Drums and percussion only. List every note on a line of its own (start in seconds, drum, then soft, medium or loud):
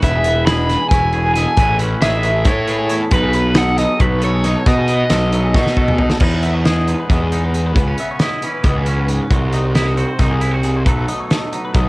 0.02 kick medium
0.02 closed hi-hat medium
0.24 closed hi-hat medium
0.47 snare loud
0.47 closed hi-hat medium
0.69 snare soft
0.69 closed hi-hat medium
0.91 kick loud
0.91 snare soft
0.91 closed hi-hat loud
1.13 closed hi-hat medium
1.35 snare soft
1.35 closed hi-hat medium
1.57 kick loud
1.57 closed hi-hat loud
1.79 closed hi-hat medium
2.02 snare loud
2.02 closed hi-hat loud
2.23 closed hi-hat medium
2.45 kick loud
2.45 closed hi-hat loud
2.67 closed hi-hat medium
2.89 closed hi-hat medium
3.11 kick loud
3.11 closed hi-hat loud
3.33 closed hi-hat medium
3.54 snare loud
3.54 closed hi-hat medium
3.78 snare soft
3.78 closed hi-hat medium
4.00 kick loud
4.00 closed hi-hat medium
4.22 closed hi-hat medium
4.44 snare soft
4.44 closed hi-hat medium
4.66 kick loud
4.66 closed hi-hat medium
4.88 closed hi-hat medium
5.10 snare loud
5.10 closed hi-hat loud
5.32 closed hi-hat medium
5.55 kick loud
5.55 snare medium
5.66 snare medium
5.77 kick medium
5.88 mid tom medium
5.99 floor tom medium
6.10 snare medium
6.20 kick loud
6.20 crash medium
6.43 closed hi-hat medium
6.65 snare loud
6.65 closed hi-hat medium
6.88 closed hi-hat medium
7.10 kick loud
7.10 closed hi-hat medium
7.32 closed hi-hat medium
7.54 closed hi-hat medium
7.76 kick loud
7.76 closed hi-hat medium
7.98 closed hi-hat medium
8.19 snare loud
8.19 closed hi-hat medium
8.42 closed hi-hat medium
8.64 kick loud
8.64 closed hi-hat medium
8.86 closed hi-hat medium
9.08 closed hi-hat medium
9.31 kick loud
9.31 closed hi-hat medium
9.52 closed hi-hat medium
9.75 snare loud
9.75 closed hi-hat medium
9.97 closed hi-hat medium
10.19 kick loud
10.19 snare soft
10.19 closed hi-hat medium
10.41 closed hi-hat medium
10.63 closed hi-hat medium
10.86 kick loud
10.86 closed hi-hat medium
11.08 closed hi-hat medium
11.30 snare loud
11.30 closed hi-hat medium
11.52 closed hi-hat medium
11.74 kick loud
11.74 closed hi-hat medium